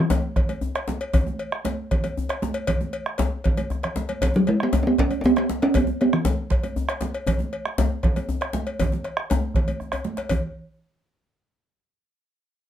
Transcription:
0.00 talking drum E3
0.10 cowbell, djembe slap, djembe tone, high conga, djembe bass
0.36 bombo rim, bombo low, cowbell, djembe slap, low conga
0.49 cowbell, djembe tone, high conga
0.61 djembe bass
0.75 bombo rim, cowbell, djembe slap
0.88 djembe slap, djembe tone, high conga
1.01 cowbell, djembe slap
1.13 bombo low, cowbell, low conga, djembe bass
1.26 high conga, djembe tone
1.39 cowbell
1.51 bombo rim, high conga
1.65 cowbell, djembe slap, high conga, djembe tone
1.91 bombo rim, bombo low, cowbell, low conga
2.04 cowbell, djembe tone, high conga
2.17 djembe bass
2.29 bombo rim, cowbell, djembe slap
2.42 djembe slap, high conga, djembe tone
2.54 cowbell, djembe slap
2.67 bombo low, cowbell, djembe slap, low conga, djembe bass
2.81 djembe tone, high conga
2.93 cowbell
3.06 bombo rim
3.18 bombo rim, cowbell, djembe slap, djembe tone, high conga, djembe bass
3.44 bombo low, cowbell, low conga
3.57 cowbell, djembe slap, djembe tone, high conga
3.70 bombo rim, djembe slap, high conga, djembe bass
3.83 bombo rim, cowbell, low conga
3.96 djembe slap, djembe tone, high conga
4.09 cowbell, djembe slap, high conga
4.21 bombo low, cowbell, djembe bass, low conga
4.34 talking drum F#3, djembe tone, high conga
4.47 talking drum G#3, cowbell
4.60 talking drum B3, bombo rim, high conga
4.73 cowbell, djembe slap, djembe tone, high conga, djembe bass
4.83 talking drum C#4
4.87 talking drum B3
4.98 talking drum C#4, bombo rim, bombo low, cowbell, low conga
5.11 cowbell, high conga, djembe tone
5.21 talking drum C#4, djembe bass
5.26 talking drum B3
5.36 talking drum B3, bombo rim, cowbell
5.49 djembe slap, high conga, djembe tone
5.62 talking drum C#4, cowbell, djembe slap
5.74 talking drum B3, bombo low, cowbell, low conga, djembe bass
5.87 djembe tone, high conga
6.01 talking drum B3, cowbell
6.13 talking drum E3, bombo rim
6.25 cowbell, djembe slap, djembe tone, high conga, djembe bass
6.50 bombo rim, bombo low, cowbell, djembe slap, low conga
6.63 cowbell, high conga, djembe tone
6.76 djembe bass
6.89 bombo rim, cowbell, djembe slap
7.01 djembe slap, djembe tone, high conga
7.14 cowbell, djembe slap
7.27 bombo low, cowbell, djembe bass, low conga
7.39 djembe tone, high conga
7.53 cowbell
7.65 bombo rim, high conga
7.78 cowbell, djembe slap, djembe tone, high conga, djembe bass
8.03 bombo rim, bombo low, cowbell, low conga
8.16 cowbell, djembe tone, high conga
8.29 djembe bass
8.41 bombo rim, cowbell, djembe slap
8.53 djembe slap, djembe tone, high conga
8.67 cowbell, djembe slap
8.79 bombo low, cowbell, high conga, djembe bass, low conga
8.92 djembe tone, high conga
9.04 bombo rim, cowbell
9.17 bombo rim, djembe slap
9.30 cowbell, djembe slap, high conga, djembe tone, djembe bass
9.54 bombo low, cowbell, low conga
9.68 cowbell, high conga, djembe bass
9.80 bombo rim, djembe bass
9.92 bombo rim, cowbell, djembe bass
10.04 djembe slap, high conga
10.17 bombo rim, cowbell, djembe slap, high conga
10.29 bombo low, cowbell, djembe bass, low conga

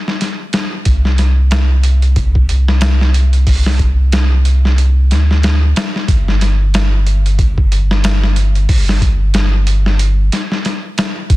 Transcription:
0.08 snare
0.21 snare, closed hi-hat
0.53 snare, closed hi-hat
0.85 sub bass C2, kick, closed hi-hat
1.05 snare
1.18 snare, closed hi-hat
1.51 snare, closed hi-hat
1.83 closed hi-hat
2.02 closed hi-hat
2.16 kick, closed hi-hat
2.35 kick
2.49 sub bass C2, closed hi-hat
2.68 snare
2.81 snare, closed hi-hat
3.01 snare
3.14 closed hi-hat
3.33 closed hi-hat
3.47 sub bass C2, kick, open hi-hat
3.66 snare
3.79 kick, closed hi-hat
4.12 snare, closed hi-hat
4.45 closed hi-hat
4.65 snare
4.78 closed hi-hat
5.11 sub bass D2, snare, closed hi-hat
5.31 snare
5.43 snare, closed hi-hat
5.76 snare, closed hi-hat
5.96 snare
6.08 sub bass G1, kick, closed hi-hat
6.28 snare
6.41 snare, closed hi-hat
6.74 snare, closed hi-hat
7.07 closed hi-hat
7.26 closed hi-hat
7.39 kick, closed hi-hat
7.58 kick
7.72 sub bass G1, closed hi-hat
7.91 snare
8.04 snare, closed hi-hat
8.23 snare
8.36 closed hi-hat
8.55 closed hi-hat
8.69 sub bass G1, kick, open hi-hat
8.89 snare
9.01 kick, closed hi-hat
9.34 snare, closed hi-hat
9.67 closed hi-hat
9.86 snare
9.99 closed hi-hat
10.32 snare, closed hi-hat
10.52 snare
10.65 snare, closed hi-hat
10.98 snare, closed hi-hat
11.30 sub bass B1, kick, closed hi-hat

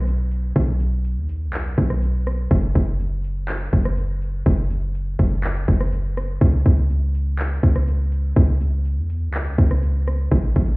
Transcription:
Already playing: 808-style bass B1
0.07 closed hi-hat
0.31 closed hi-hat
0.56 808-style bass B1, kick, closed hi-hat
0.80 closed hi-hat
1.05 closed hi-hat
1.17 808-style bass D#2
1.29 closed hi-hat
1.47 808-style bass B1
1.54 clap, closed hi-hat
1.78 808-style bass B1, kick
1.90 cross-stick
2.02 closed hi-hat
2.26 cross-stick, closed hi-hat
2.51 808-style bass F#1, kick, closed hi-hat
2.75 808-style bass F#1, kick, closed hi-hat
3.00 closed hi-hat
3.24 closed hi-hat
3.49 clap, closed hi-hat
3.73 808-style bass F#1, kick
3.85 cross-stick
3.97 closed hi-hat
4.22 closed hi-hat
4.46 808-style bass F#1, kick, closed hi-hat
4.70 closed hi-hat
4.95 closed hi-hat
5.19 808-style bass F#1, kick, closed hi-hat
5.27 closed hi-hat
5.36 closed hi-hat
5.44 clap, closed hi-hat
5.68 808-style bass F#1, kick
5.81 cross-stick
5.92 closed hi-hat
6.17 cross-stick, closed hi-hat
6.41 808-style bass C#2, kick, closed hi-hat
6.66 808-style bass C#2, kick, closed hi-hat
6.90 closed hi-hat
7.15 closed hi-hat
7.39 clap, closed hi-hat
7.63 808-style bass C#2, kick
7.76 cross-stick
7.88 closed hi-hat
8.12 closed hi-hat
8.36 808-style bass C#2, kick, closed hi-hat
8.61 closed hi-hat
8.85 closed hi-hat
8.97 808-style bass E2
9.10 closed hi-hat
9.28 808-style bass C#2
9.34 clap, closed hi-hat
9.58 808-style bass C#2, kick
9.71 cross-stick
9.83 closed hi-hat
10.07 cross-stick, closed hi-hat
10.31 808-style bass A1, kick, closed hi-hat
10.56 808-style bass A1, kick, closed hi-hat

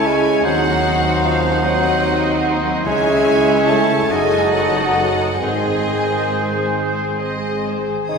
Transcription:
Already playing: double bass section C#2, cello section C#2, harp C#3 G#3 E4 G#4, french horn section C#4 E4, viola section C#4 E4, clarinet E4, violin section E4 G#5, oboe C#5, flute section G#5
0.04 bassoon G#3, harp C#4, violin section G#5
0.25 harp G#3
0.43 double bass section D#2, cello section D#2, harp D#3, bassoon F#3, french horn section C4 D#4, clarinet D#4, viola section D#4, violin section F#4 F#5, oboe C5, flute section F#5
0.65 harp F#3
0.84 harp C4
1.05 harp D#4
1.23 bassoon F3, harp F#4, violin section F5
1.44 harp D#4
1.64 bassoon F#3, french horn section C4 D#4, viola section C4 D#4, violin section F#4 D#5 F#5, harp F#4
1.85 harp D#4
2.04 harp F#4
2.25 harp D#4
2.44 harp C4
2.64 harp F#3
2.84 double bass section C#2, cello section C#2, harp C#3, timpani C#3, bassoon G#3, french horn section C#4 E4, viola section C#4 E4, clarinet G#4, violin section G#4 E5 G#5, oboe C#5, flute section E5
3.06 harp G#3
3.26 harp C#4
3.69 bassoon A3, harp G#4, violin section A5
3.90 harp E4
4.11 double bass section F#1, harp F#2, cello section F#2, bassoon G#3, french horn section D#4 A4, viola section D#4 F#4, clarinet A4, violin section A4 D#5 G#5, oboe D#5, flute section F#5
4.32 harp F#3
4.53 bassoon F#3, harp A3, violin section F#5
4.62 bassoon G#3
4.69 bassoon F#3
4.75 bassoon G#3, harp D#4
4.87 bassoon F#3
4.95 bassoon G#3, harp A3
5.03 bassoon F#3
5.42 double bass section G#1, harp G#2, cello section G#2, timpani G#2, bassoon D#3, viola section C4 G#4, french horn section C4 G#4, violin section G#4 D#5 G#5, clarinet G#4, oboe C5, flute section G#5
5.66 harp D#3
5.88 harp G#3
6.11 harp C4
6.32 harp G#4
6.54 harp C4
6.75 harp G#4, violin section C5
6.97 harp C4
7.20 harp G#4, violin section D#5
7.42 harp C4
7.65 harp G#3, violin section C5
7.88 harp D#3
8.09 cello section C#2, double bass section C#2, harp C#3, french horn section C#4 G#4, viola section C#4 G#4, bassoon D#4, violin section G#4 G#5 D#6, oboe C#5

